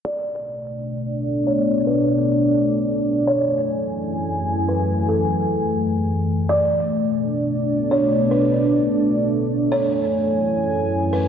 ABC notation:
X:1
M:4/4
L:1/8
Q:1/4=149
K:Bdor
V:1 name="Kalimba"
d2 z4 z c | z B6- B | c2 z4 z B | z A3 z4 |
d2 z4 z c | z B6- B | c2 z4 z B |]
V:2 name="Analog synth pad"
[B,,A,Dd]8- | [B,,A,Dd]8 | [F,,E,A,g]8- | [F,,E,A,g]8 |
[B,,Dd]8- | [B,,Dd]8 | [F,,E,g]8 |]